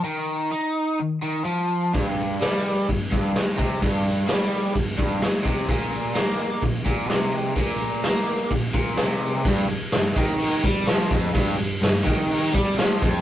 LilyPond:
<<
  \new Staff \with { instrumentName = "Overdriven electric guitar" } { \clef bass \time 4/4 \key ees \lydian \tempo 4 = 127 ees4 ees'4 ees8 ees8 f4 | g,4 g4 g,8 g,8 r8 c8 | g,4 g4 g,8 g,8 r8 c8 | bes,4 bes4 bes,8 bes,8 c4 |
bes,4 bes4 bes,8 bes,8 c4 | g,8 g,8 g,8 ees4 g8 f8 f,8 | g,8 g,8 g,8 ees4 g8 f8 f,8 | }
  \new DrumStaff \with { instrumentName = "Drums" } \drummode { \time 4/4 r4 r4 r4 r4 | <cymc bd>4 <cymc sn>4 <cymc bd>8 bd8 <cymc sn>8 bd8 | <cymc bd>4 <cymc sn>4 <cymc bd>8 bd8 <cymc sn>8 bd8 | <cymc bd>4 <cymc sn>4 <cymc bd>8 bd8 <cymc sn>4 |
<cymc bd>4 <cymc sn>4 <cymc bd>8 bd8 <cymc sn>4 | <cymc bd>4 <cymc sn>8 bd8 cymc8 bd8 <cymc sn>8 bd8 | <cymc bd>4 <cymc sn>8 bd8 cymc8 bd8 <cymc sn>8 bd8 | }
>>